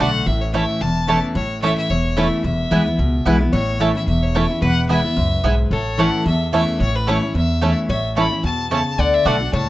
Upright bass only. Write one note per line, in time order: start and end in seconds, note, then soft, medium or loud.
0.00 0.23 B1 medium
0.26 0.64 A1 loud
0.81 1.19 E1 medium
1.35 1.73 A1 loud
1.90 2.28 E1 medium
2.44 2.63 E1 medium
2.71 2.95 D2 medium
2.99 3.22 C#2 medium
3.26 3.49 B1 medium
3.53 3.91 A1 loud
4.07 4.45 E1 medium
4.62 5.00 E1 loud
5.17 5.40 C#2 medium
5.44 5.67 B1 medium
5.71 6.09 A1 medium
6.26 6.64 E2 medium
6.80 7.18 A1 loud
7.35 7.73 E2 loud
7.89 8.27 A1 loud
8.44 8.82 E2 medium
8.98 9.17 D2 loud
9.26 9.49 B1 loud
9.53 9.69 C#2 loud